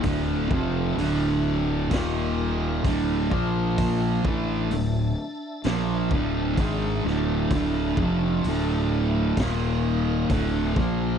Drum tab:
HH |o-o-o-o-|o-o-o-o-|o-o-o-o-|
SD |----o---|----o--o|----o--o|
BD |oo--o-oo|oo---oo-|oo--o-oo|